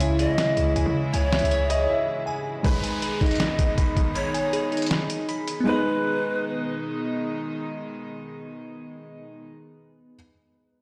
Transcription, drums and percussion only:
0.00 closed hi-hat medium
0.19 closed hi-hat medium
0.38 finger snap medium
0.38 snare loud
0.38 closed hi-hat medium
0.57 closed hi-hat medium
0.76 closed hi-hat medium
1.14 closed hi-hat medium
1.32 finger snap medium
1.32 snare loud
1.32 closed hi-hat soft
1.39 closed hi-hat medium
1.45 closed hi-hat medium
1.51 closed hi-hat medium
1.70 closed hi-hat medium
2.64 kick loud
2.64 closed hi-hat medium
2.84 closed hi-hat medium
3.02 closed hi-hat medium
3.21 kick medium
3.21 closed hi-hat soft
3.26 closed hi-hat medium
3.31 closed hi-hat medium
3.35 closed hi-hat medium
3.40 finger snap medium
3.40 snare loud
3.40 closed hi-hat medium
3.59 kick loud
3.59 closed hi-hat medium
3.78 kick loud
3.78 closed hi-hat medium
3.97 kick medium
3.97 closed hi-hat medium
4.15 closed hi-hat medium
4.34 closed hi-hat medium
4.53 closed hi-hat medium
4.72 closed hi-hat soft
4.77 closed hi-hat medium
4.82 closed hi-hat medium
4.86 closed hi-hat medium
4.91 finger snap medium
4.91 snare loud
4.91 closed hi-hat medium
5.10 closed hi-hat medium
5.29 closed hi-hat medium
5.48 closed hi-hat medium

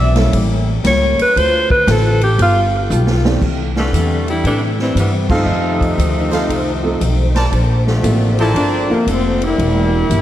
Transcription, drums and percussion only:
0.15 snare soft
0.15 ride medium
0.33 kick soft
0.33 ride medium
0.84 kick soft
0.84 snare medium
0.84 hi-hat pedal medium
0.84 ride medium
1.19 ride medium
1.36 kick soft
1.36 ride medium
1.71 kick medium
1.88 kick soft
1.88 snare medium
1.88 hi-hat pedal medium
1.88 ride medium
2.21 ride medium
2.39 kick soft
2.39 ride medium
2.91 hi-hat pedal medium
3.07 snare medium
3.25 snare loud
3.42 kick medium
3.42 crash medium
3.76 snare medium
3.93 kick soft
3.93 hi-hat pedal medium
3.93 ride medium
4.28 ride soft
4.44 kick soft
4.44 ride medium
4.79 snare soft
4.96 kick soft
4.96 hi-hat pedal medium
4.96 ride medium
5.30 kick medium
5.30 crash medium
5.81 kick medium
5.81 ride soft
5.98 kick soft
5.98 hi-hat pedal medium
5.98 ride medium
6.33 snare soft
6.33 ride soft
6.50 kick soft
6.50 ride medium
7.01 kick soft
7.01 hi-hat pedal medium
7.01 ride medium
7.35 snare medium
7.35 ride medium
7.52 kick soft
7.52 ride medium
7.87 snare soft
8.04 kick soft
8.04 hi-hat pedal medium
8.04 ride medium
8.39 ride soft
8.55 kick soft
8.55 ride medium
9.07 kick soft
9.07 hi-hat pedal medium
9.07 ride medium
9.42 ride medium
9.58 kick soft
9.58 ride medium
10.10 kick soft
10.10 hi-hat pedal medium
10.10 ride medium

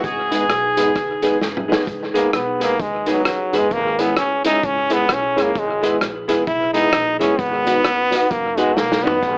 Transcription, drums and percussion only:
0.04 kick loud
0.04 closed hi-hat medium
0.32 closed hi-hat loud
0.50 cross-stick loud
0.50 closed hi-hat medium
0.77 closed hi-hat loud
0.95 kick loud
0.95 cross-stick medium
0.95 closed hi-hat medium
1.22 closed hi-hat medium
1.41 snare medium
1.57 mid tom medium
1.72 snare loud
1.87 kick loud
1.87 closed hi-hat medium
2.15 closed hi-hat medium
2.33 cross-stick medium
2.33 closed hi-hat medium
2.61 closed hi-hat medium
2.80 kick loud
2.80 closed hi-hat medium
3.06 closed hi-hat medium
3.25 cross-stick loud
3.25 closed hi-hat medium
3.53 closed hi-hat medium
3.71 kick loud
3.71 closed hi-hat medium
3.99 closed hi-hat medium
4.17 cross-stick medium
4.17 closed hi-hat medium
4.45 closed hi-hat loud
4.63 kick loud
4.63 closed hi-hat medium
4.90 closed hi-hat medium
5.09 cross-stick loud
5.09 closed hi-hat medium
5.38 closed hi-hat medium
5.55 kick loud
5.55 closed hi-hat medium
5.83 closed hi-hat medium
6.01 cross-stick medium
6.01 closed hi-hat medium
6.29 closed hi-hat loud
6.47 kick loud
6.47 closed hi-hat medium
6.74 closed hi-hat medium
6.93 cross-stick loud
6.93 closed hi-hat medium
7.21 closed hi-hat medium
7.39 kick loud
7.39 closed hi-hat medium
7.67 closed hi-hat medium
7.84 cross-stick loud
7.84 closed hi-hat medium
8.12 closed hi-hat loud
8.31 kick loud
8.31 closed hi-hat medium
8.57 closed hi-hat medium
8.77 snare medium
8.92 snare medium
9.07 floor tom loud
9.23 kick loud
9.23 closed hi-hat medium

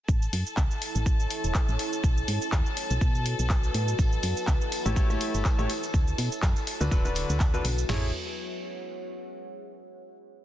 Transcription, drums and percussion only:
0.09 kick loud
0.09 shaker soft
0.22 shaker soft
0.33 open hi-hat loud
0.47 shaker medium
0.57 kick loud
0.57 clap loud
0.57 shaker soft
0.71 shaker soft
0.82 open hi-hat loud
0.95 shaker medium
1.06 kick loud
1.06 shaker medium
1.20 shaker soft
1.30 open hi-hat loud
1.44 shaker medium
1.54 kick loud
1.54 clap loud
1.54 shaker medium
1.69 shaker soft
1.79 open hi-hat loud
1.93 shaker medium
2.04 kick loud
2.04 shaker medium
2.17 shaker soft
2.28 open hi-hat loud
2.42 shaker medium
2.52 kick loud
2.52 clap loud
2.52 shaker soft
2.66 shaker soft
2.77 open hi-hat loud
2.91 shaker medium
3.01 kick loud
3.01 shaker soft
3.15 shaker soft
3.26 open hi-hat loud
3.39 shaker medium
3.50 kick loud
3.50 clap loud
3.50 shaker soft
3.64 shaker soft
3.74 open hi-hat loud
3.88 shaker medium
3.98 kick loud
3.98 tambourine medium
3.98 shaker soft
4.12 shaker soft
4.23 open hi-hat loud
4.23 tambourine loud
4.37 tambourine soft
4.37 shaker medium
4.47 kick loud
4.47 clap loud
4.47 tambourine medium
4.47 shaker soft
4.61 shaker soft
4.72 open hi-hat loud
4.72 tambourine medium
4.86 tambourine soft
4.86 shaker medium
4.96 kick loud
4.96 tambourine soft
4.96 shaker medium
5.10 tambourine soft
5.10 shaker soft
5.20 open hi-hat loud
5.20 tambourine medium
5.34 tambourine soft
5.34 shaker medium
5.45 kick loud
5.45 clap loud
5.45 tambourine soft
5.45 shaker medium
5.59 shaker soft
5.70 open hi-hat loud
5.70 tambourine medium
5.83 tambourine soft
5.83 shaker medium
5.94 kick loud
5.94 tambourine soft
5.94 shaker medium
6.08 shaker soft
6.18 open hi-hat loud
6.18 tambourine medium
6.32 tambourine soft
6.32 shaker medium
6.42 kick loud
6.42 clap loud
6.42 tambourine medium
6.42 shaker medium
6.56 tambourine soft
6.56 shaker soft
6.67 open hi-hat loud
6.67 tambourine medium
6.81 tambourine soft
6.81 shaker medium
6.91 kick loud
6.91 tambourine medium
6.91 shaker medium
7.05 tambourine soft
7.05 shaker soft
7.15 open hi-hat loud
7.15 tambourine medium
7.30 tambourine soft
7.30 shaker medium
7.40 kick loud
7.40 clap loud
7.40 tambourine medium
7.40 shaker medium
7.54 shaker soft
7.65 open hi-hat loud
7.65 tambourine medium
7.78 tambourine soft
7.78 shaker medium
7.89 snare loud
7.89 floor tom loud
7.89 crash medium

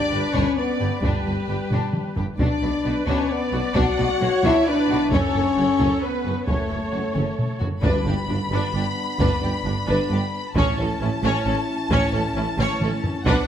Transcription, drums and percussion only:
0.34 taiko medium
1.03 taiko medium
1.71 taiko low-mid medium
1.93 taiko mid medium
2.16 taiko low medium
2.39 taiko medium
3.07 taiko medium
3.75 taiko medium
4.43 taiko medium
5.12 taiko medium
5.80 taiko medium
6.47 taiko medium
7.15 taiko mid medium
7.39 taiko low-mid medium
7.61 taiko low medium
7.84 taiko medium
9.20 taiko medium
10.56 taiko medium
11.91 taiko medium
12.59 taiko mid medium
12.81 taiko mid medium
13.04 taiko low medium
13.26 taiko medium

